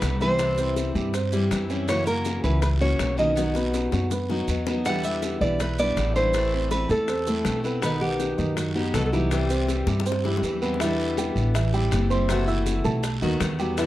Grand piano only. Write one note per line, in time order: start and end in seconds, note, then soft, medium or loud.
0.00 0.14 B3 medium
0.00 0.14 B4 medium
0.21 0.51 E3 medium
0.21 0.52 E4 medium
0.58 0.89 C4 medium
0.58 0.89 C5 medium
0.95 1.11 G3 medium
0.95 1.11 G4 medium
1.14 1.29 C4 medium
1.14 1.29 C5 medium
1.33 1.63 G3 medium
1.33 1.64 G4 medium
1.70 1.85 C#4 medium
1.70 1.85 C#5 medium
1.88 2.04 E3 medium
1.88 2.04 E4 medium
2.06 2.37 A#3 medium
2.06 2.37 A#4 medium
2.44 2.75 E3 medium
2.44 2.75 E4 medium
2.81 3.12 C#4 medium
2.81 3.12 C#5 medium
3.18 3.49 D#3 medium
3.18 3.49 D#4 medium
3.56 3.86 B3 medium
3.56 3.86 B4 medium
3.93 4.08 F#3 medium
3.93 4.08 F#4 medium
4.11 4.27 B3 medium
4.11 4.27 B4 medium
4.30 4.61 F#3 medium
4.30 4.61 F#4 medium
4.67 4.82 B3 medium
4.67 4.83 B4 medium
4.86 5.01 E3 medium
4.86 5.01 E4 medium
5.05 5.35 G3 medium
5.05 5.35 G4 medium
5.42 5.72 E3 medium
5.42 5.72 E4 medium
5.79 6.09 B3 medium
5.79 6.09 B4 medium
6.16 6.47 E3 medium
6.16 6.47 E4 medium
6.53 6.84 C4 medium
6.53 6.84 C5 medium
6.90 7.05 A3 medium
6.90 7.06 A4 medium
7.09 7.24 C4 medium
7.09 7.24 C5 medium
7.27 7.58 A3 medium
7.27 7.58 A4 medium
7.65 7.80 B3 medium
7.65 7.80 B4 medium
7.83 7.98 D#3 medium
7.83 7.98 D#4 medium
8.01 8.32 D#3 medium
8.01 8.32 F#5 medium
8.38 8.69 D#3 medium
8.38 8.69 D#4 medium
8.75 9.06 B3 medium
8.75 9.06 B4 medium
9.13 9.43 E3 medium
9.13 9.43 E4 medium
9.50 9.81 C4 medium
9.50 9.81 C5 medium
9.87 10.02 G3 medium
9.87 10.03 G4 medium
10.06 10.21 C4 medium
10.06 10.21 C5 medium
10.24 10.55 G3 medium
10.24 10.55 G4 medium
10.62 10.77 B3 medium
10.62 10.77 B4 medium
10.80 11.11 E3 medium
10.80 11.11 E4 medium
10.80 11.11 E5 medium
11.17 11.48 G3 medium
11.17 11.48 G4 medium
11.17 11.48 G5 medium
11.54 11.70 E3 medium
11.54 11.70 E4 medium
11.54 11.70 E5 medium
11.73 12.04 G3 medium
11.73 12.04 G4 medium
11.73 12.04 G5 medium
12.10 12.41 C4 medium
12.10 12.41 C5 medium
12.10 12.41 C6 medium
12.47 12.78 E4 medium
12.47 12.78 E5 medium
12.47 12.78 E6 medium
12.84 13.15 A3 medium
12.84 13.15 A4 medium
12.84 13.15 A5 medium
13.22 13.52 D#3 medium
13.22 13.52 D#4 medium
13.22 13.53 D#5 medium
13.59 13.74 G3 medium
13.59 13.74 G4 medium
13.59 13.75 G5 medium
13.78 13.86 E3 medium
13.78 13.86 E4 medium
13.78 13.86 E5 medium